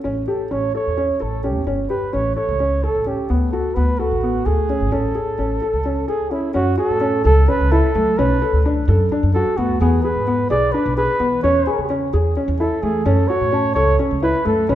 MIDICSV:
0, 0, Header, 1, 5, 480
1, 0, Start_track
1, 0, Key_signature, 3, "major"
1, 0, Tempo, 464756
1, 42, Time_signature, 7, 3, 24, 8
1, 15234, End_track
2, 0, Start_track
2, 0, Title_t, "Celesta"
2, 0, Program_c, 0, 8
2, 7245, Note_on_c, 0, 81, 42
2, 7923, Note_off_c, 0, 81, 0
2, 12050, Note_on_c, 0, 80, 57
2, 12725, Note_off_c, 0, 80, 0
2, 13981, Note_on_c, 0, 81, 53
2, 14650, Note_off_c, 0, 81, 0
2, 15234, End_track
3, 0, Start_track
3, 0, Title_t, "Flugelhorn"
3, 0, Program_c, 1, 56
3, 289, Note_on_c, 1, 69, 62
3, 535, Note_on_c, 1, 73, 69
3, 550, Note_off_c, 1, 69, 0
3, 769, Note_off_c, 1, 73, 0
3, 780, Note_on_c, 1, 73, 71
3, 1263, Note_on_c, 1, 69, 65
3, 1279, Note_off_c, 1, 73, 0
3, 1482, Note_off_c, 1, 69, 0
3, 1488, Note_on_c, 1, 67, 49
3, 1710, Note_off_c, 1, 67, 0
3, 1950, Note_on_c, 1, 71, 67
3, 2202, Note_on_c, 1, 73, 72
3, 2217, Note_off_c, 1, 71, 0
3, 2426, Note_off_c, 1, 73, 0
3, 2432, Note_on_c, 1, 73, 71
3, 2924, Note_on_c, 1, 69, 70
3, 2940, Note_off_c, 1, 73, 0
3, 3174, Note_on_c, 1, 67, 56
3, 3189, Note_off_c, 1, 69, 0
3, 3410, Note_off_c, 1, 67, 0
3, 3627, Note_on_c, 1, 69, 66
3, 3867, Note_on_c, 1, 71, 74
3, 3882, Note_off_c, 1, 69, 0
3, 4123, Note_on_c, 1, 66, 67
3, 4139, Note_off_c, 1, 71, 0
3, 4599, Note_on_c, 1, 68, 76
3, 4615, Note_off_c, 1, 66, 0
3, 5086, Note_on_c, 1, 69, 66
3, 5101, Note_off_c, 1, 68, 0
3, 6270, Note_off_c, 1, 69, 0
3, 6276, Note_on_c, 1, 68, 65
3, 6516, Note_on_c, 1, 64, 55
3, 6532, Note_off_c, 1, 68, 0
3, 6751, Note_off_c, 1, 64, 0
3, 6757, Note_on_c, 1, 66, 75
3, 6986, Note_off_c, 1, 66, 0
3, 7005, Note_on_c, 1, 69, 82
3, 7454, Note_off_c, 1, 69, 0
3, 7489, Note_on_c, 1, 69, 82
3, 7731, Note_on_c, 1, 71, 81
3, 7746, Note_off_c, 1, 69, 0
3, 7965, Note_on_c, 1, 69, 89
3, 7981, Note_off_c, 1, 71, 0
3, 8449, Note_on_c, 1, 71, 79
3, 8465, Note_off_c, 1, 69, 0
3, 8929, Note_off_c, 1, 71, 0
3, 9644, Note_on_c, 1, 69, 80
3, 9883, Note_on_c, 1, 66, 73
3, 9899, Note_off_c, 1, 69, 0
3, 10117, Note_off_c, 1, 66, 0
3, 10123, Note_on_c, 1, 68, 75
3, 10348, Note_on_c, 1, 71, 80
3, 10363, Note_off_c, 1, 68, 0
3, 10838, Note_off_c, 1, 71, 0
3, 10845, Note_on_c, 1, 74, 85
3, 11074, Note_on_c, 1, 71, 76
3, 11089, Note_off_c, 1, 74, 0
3, 11321, Note_off_c, 1, 71, 0
3, 11326, Note_on_c, 1, 71, 89
3, 11774, Note_off_c, 1, 71, 0
3, 11805, Note_on_c, 1, 73, 74
3, 12253, Note_off_c, 1, 73, 0
3, 13007, Note_on_c, 1, 69, 73
3, 13242, Note_on_c, 1, 68, 71
3, 13258, Note_off_c, 1, 69, 0
3, 13476, Note_on_c, 1, 69, 81
3, 13491, Note_off_c, 1, 68, 0
3, 13712, Note_on_c, 1, 73, 95
3, 13727, Note_off_c, 1, 69, 0
3, 14188, Note_off_c, 1, 73, 0
3, 14194, Note_on_c, 1, 73, 79
3, 14424, Note_off_c, 1, 73, 0
3, 14697, Note_on_c, 1, 71, 81
3, 14916, Note_off_c, 1, 71, 0
3, 14943, Note_on_c, 1, 69, 69
3, 15181, Note_on_c, 1, 71, 81
3, 15197, Note_off_c, 1, 69, 0
3, 15234, Note_off_c, 1, 71, 0
3, 15234, End_track
4, 0, Start_track
4, 0, Title_t, "Felt piano"
4, 0, Program_c, 2, 0
4, 42, Note_on_c, 2, 61, 65
4, 220, Note_off_c, 2, 61, 0
4, 286, Note_on_c, 2, 67, 56
4, 462, Note_off_c, 2, 67, 0
4, 526, Note_on_c, 2, 61, 51
4, 703, Note_off_c, 2, 61, 0
4, 771, Note_on_c, 2, 69, 57
4, 946, Note_off_c, 2, 69, 0
4, 1005, Note_on_c, 2, 61, 54
4, 1182, Note_off_c, 2, 61, 0
4, 1241, Note_on_c, 2, 69, 60
4, 1420, Note_off_c, 2, 69, 0
4, 1486, Note_on_c, 2, 61, 53
4, 1663, Note_off_c, 2, 61, 0
4, 1723, Note_on_c, 2, 61, 63
4, 1901, Note_off_c, 2, 61, 0
4, 1960, Note_on_c, 2, 67, 54
4, 2139, Note_off_c, 2, 67, 0
4, 2199, Note_on_c, 2, 61, 53
4, 2379, Note_off_c, 2, 61, 0
4, 2442, Note_on_c, 2, 69, 59
4, 2621, Note_off_c, 2, 69, 0
4, 2684, Note_on_c, 2, 61, 51
4, 2862, Note_off_c, 2, 61, 0
4, 2928, Note_on_c, 2, 69, 60
4, 3105, Note_off_c, 2, 69, 0
4, 3164, Note_on_c, 2, 61, 48
4, 3342, Note_off_c, 2, 61, 0
4, 3407, Note_on_c, 2, 59, 67
4, 3584, Note_off_c, 2, 59, 0
4, 3645, Note_on_c, 2, 66, 58
4, 3823, Note_off_c, 2, 66, 0
4, 3888, Note_on_c, 2, 59, 57
4, 4065, Note_off_c, 2, 59, 0
4, 4127, Note_on_c, 2, 69, 66
4, 4304, Note_off_c, 2, 69, 0
4, 4373, Note_on_c, 2, 59, 58
4, 4548, Note_off_c, 2, 59, 0
4, 4607, Note_on_c, 2, 69, 61
4, 4785, Note_off_c, 2, 69, 0
4, 4848, Note_on_c, 2, 61, 54
4, 5025, Note_off_c, 2, 61, 0
4, 5080, Note_on_c, 2, 61, 69
4, 5261, Note_off_c, 2, 61, 0
4, 5320, Note_on_c, 2, 68, 55
4, 5500, Note_off_c, 2, 68, 0
4, 5562, Note_on_c, 2, 61, 54
4, 5742, Note_off_c, 2, 61, 0
4, 5805, Note_on_c, 2, 69, 61
4, 5984, Note_off_c, 2, 69, 0
4, 6045, Note_on_c, 2, 61, 56
4, 6224, Note_off_c, 2, 61, 0
4, 6278, Note_on_c, 2, 69, 55
4, 6459, Note_off_c, 2, 69, 0
4, 6519, Note_on_c, 2, 61, 50
4, 6700, Note_off_c, 2, 61, 0
4, 6756, Note_on_c, 2, 61, 74
4, 6938, Note_off_c, 2, 61, 0
4, 6998, Note_on_c, 2, 66, 66
4, 7180, Note_off_c, 2, 66, 0
4, 7237, Note_on_c, 2, 61, 63
4, 7419, Note_off_c, 2, 61, 0
4, 7481, Note_on_c, 2, 69, 72
4, 7662, Note_off_c, 2, 69, 0
4, 7727, Note_on_c, 2, 61, 66
4, 7905, Note_off_c, 2, 61, 0
4, 7972, Note_on_c, 2, 64, 71
4, 8148, Note_off_c, 2, 64, 0
4, 8214, Note_on_c, 2, 57, 61
4, 8390, Note_off_c, 2, 57, 0
4, 8454, Note_on_c, 2, 61, 81
4, 8630, Note_off_c, 2, 61, 0
4, 8696, Note_on_c, 2, 69, 69
4, 8871, Note_off_c, 2, 69, 0
4, 8940, Note_on_c, 2, 62, 73
4, 9113, Note_off_c, 2, 62, 0
4, 9180, Note_on_c, 2, 69, 76
4, 9353, Note_off_c, 2, 69, 0
4, 9417, Note_on_c, 2, 62, 72
4, 9592, Note_off_c, 2, 62, 0
4, 9662, Note_on_c, 2, 66, 65
4, 9835, Note_off_c, 2, 66, 0
4, 9898, Note_on_c, 2, 59, 62
4, 10072, Note_off_c, 2, 59, 0
4, 10138, Note_on_c, 2, 59, 81
4, 10312, Note_off_c, 2, 59, 0
4, 10373, Note_on_c, 2, 68, 65
4, 10549, Note_off_c, 2, 68, 0
4, 10611, Note_on_c, 2, 59, 67
4, 10788, Note_off_c, 2, 59, 0
4, 10852, Note_on_c, 2, 68, 77
4, 11029, Note_off_c, 2, 68, 0
4, 11094, Note_on_c, 2, 62, 69
4, 11270, Note_off_c, 2, 62, 0
4, 11334, Note_on_c, 2, 68, 69
4, 11510, Note_off_c, 2, 68, 0
4, 11566, Note_on_c, 2, 59, 58
4, 11744, Note_off_c, 2, 59, 0
4, 11813, Note_on_c, 2, 61, 81
4, 11989, Note_off_c, 2, 61, 0
4, 12053, Note_on_c, 2, 68, 59
4, 12229, Note_off_c, 2, 68, 0
4, 12290, Note_on_c, 2, 61, 66
4, 12467, Note_off_c, 2, 61, 0
4, 12532, Note_on_c, 2, 68, 74
4, 12708, Note_off_c, 2, 68, 0
4, 12773, Note_on_c, 2, 61, 60
4, 12949, Note_off_c, 2, 61, 0
4, 13014, Note_on_c, 2, 64, 64
4, 13189, Note_off_c, 2, 64, 0
4, 13251, Note_on_c, 2, 57, 61
4, 13428, Note_off_c, 2, 57, 0
4, 13486, Note_on_c, 2, 61, 85
4, 13664, Note_off_c, 2, 61, 0
4, 13734, Note_on_c, 2, 66, 61
4, 13909, Note_off_c, 2, 66, 0
4, 13967, Note_on_c, 2, 61, 64
4, 14145, Note_off_c, 2, 61, 0
4, 14213, Note_on_c, 2, 69, 69
4, 14388, Note_off_c, 2, 69, 0
4, 14451, Note_on_c, 2, 61, 67
4, 14627, Note_off_c, 2, 61, 0
4, 14692, Note_on_c, 2, 64, 71
4, 14868, Note_off_c, 2, 64, 0
4, 14925, Note_on_c, 2, 57, 62
4, 15103, Note_off_c, 2, 57, 0
4, 15173, Note_on_c, 2, 61, 78
4, 15234, Note_off_c, 2, 61, 0
4, 15234, End_track
5, 0, Start_track
5, 0, Title_t, "Upright bass"
5, 0, Program_c, 3, 32
5, 52, Note_on_c, 3, 33, 66
5, 253, Note_off_c, 3, 33, 0
5, 529, Note_on_c, 3, 33, 64
5, 731, Note_off_c, 3, 33, 0
5, 899, Note_on_c, 3, 40, 55
5, 1200, Note_off_c, 3, 40, 0
5, 1255, Note_on_c, 3, 33, 62
5, 1609, Note_off_c, 3, 33, 0
5, 1609, Note_on_c, 3, 40, 60
5, 1709, Note_off_c, 3, 40, 0
5, 1721, Note_on_c, 3, 31, 61
5, 1927, Note_off_c, 3, 31, 0
5, 2213, Note_on_c, 3, 33, 62
5, 2414, Note_off_c, 3, 33, 0
5, 2567, Note_on_c, 3, 37, 66
5, 2976, Note_off_c, 3, 37, 0
5, 3044, Note_on_c, 3, 33, 56
5, 3250, Note_off_c, 3, 33, 0
5, 3409, Note_on_c, 3, 38, 62
5, 3613, Note_off_c, 3, 38, 0
5, 3889, Note_on_c, 3, 38, 71
5, 4093, Note_off_c, 3, 38, 0
5, 4248, Note_on_c, 3, 33, 59
5, 4555, Note_off_c, 3, 33, 0
5, 4606, Note_on_c, 3, 38, 65
5, 4960, Note_on_c, 3, 33, 64
5, 4975, Note_off_c, 3, 38, 0
5, 5065, Note_off_c, 3, 33, 0
5, 5081, Note_on_c, 3, 33, 69
5, 5289, Note_off_c, 3, 33, 0
5, 5559, Note_on_c, 3, 33, 58
5, 5768, Note_off_c, 3, 33, 0
5, 5919, Note_on_c, 3, 37, 65
5, 6230, Note_off_c, 3, 37, 0
5, 6765, Note_on_c, 3, 42, 73
5, 6972, Note_off_c, 3, 42, 0
5, 7124, Note_on_c, 3, 45, 61
5, 7433, Note_off_c, 3, 45, 0
5, 7488, Note_on_c, 3, 37, 86
5, 7693, Note_off_c, 3, 37, 0
5, 7854, Note_on_c, 3, 37, 71
5, 8057, Note_off_c, 3, 37, 0
5, 8214, Note_on_c, 3, 54, 74
5, 8417, Note_off_c, 3, 54, 0
5, 8457, Note_on_c, 3, 35, 77
5, 8658, Note_off_c, 3, 35, 0
5, 8809, Note_on_c, 3, 38, 60
5, 9116, Note_off_c, 3, 38, 0
5, 9169, Note_on_c, 3, 42, 85
5, 9374, Note_off_c, 3, 42, 0
5, 9533, Note_on_c, 3, 42, 73
5, 9736, Note_off_c, 3, 42, 0
5, 9891, Note_on_c, 3, 38, 76
5, 10095, Note_off_c, 3, 38, 0
5, 10128, Note_on_c, 3, 40, 84
5, 10333, Note_off_c, 3, 40, 0
5, 10480, Note_on_c, 3, 44, 60
5, 10791, Note_off_c, 3, 44, 0
5, 10845, Note_on_c, 3, 35, 78
5, 11051, Note_off_c, 3, 35, 0
5, 11212, Note_on_c, 3, 35, 79
5, 11416, Note_off_c, 3, 35, 0
5, 11569, Note_on_c, 3, 52, 68
5, 11774, Note_off_c, 3, 52, 0
5, 11809, Note_on_c, 3, 40, 75
5, 12014, Note_off_c, 3, 40, 0
5, 12172, Note_on_c, 3, 49, 55
5, 12477, Note_off_c, 3, 49, 0
5, 12532, Note_on_c, 3, 40, 79
5, 12735, Note_off_c, 3, 40, 0
5, 12888, Note_on_c, 3, 40, 82
5, 13093, Note_off_c, 3, 40, 0
5, 13250, Note_on_c, 3, 52, 66
5, 13454, Note_off_c, 3, 52, 0
5, 13485, Note_on_c, 3, 42, 79
5, 13691, Note_off_c, 3, 42, 0
5, 13850, Note_on_c, 3, 45, 59
5, 14156, Note_off_c, 3, 45, 0
5, 14208, Note_on_c, 3, 37, 83
5, 14413, Note_off_c, 3, 37, 0
5, 14573, Note_on_c, 3, 37, 75
5, 14775, Note_off_c, 3, 37, 0
5, 14932, Note_on_c, 3, 42, 68
5, 15135, Note_off_c, 3, 42, 0
5, 15175, Note_on_c, 3, 35, 85
5, 15234, Note_off_c, 3, 35, 0
5, 15234, End_track
0, 0, End_of_file